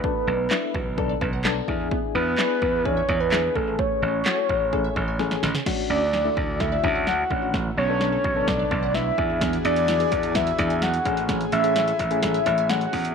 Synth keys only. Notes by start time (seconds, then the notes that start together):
0.04 B3 D4 A4
0.51 B3 D4 E4
0.97 B3 D4 A4
1.44 B3 D4 A4
1.68 D4 E4 G#4
2.38 D4 E4 G#4
2.85 D4 E4 G#4
3.32 D4 E4 G#4
3.55 A3 C#4 G#4
4.25 A3 C#4 F#4
4.72 A3 C#4 G#4
5.19 A3 C#4 G#4
5.66 C#4 D4 F#4
6.25 A3 D4 E4
6.83 C#4 D4 F#4
7.30 C#4 D4 F#4
7.89 B3 D4 A4
8.36 B3 D4 A4
8.94 B3 D4 E4
9.18 D4 E4 G#4
10.00 D4 E4 G#4
10.58 D4 E4 G#4
11.05 A3 C#4 G#4
11.64 A3 C#4 G#4
12.11 A3 C#4 G#4
12.69 A3 C#4 G#4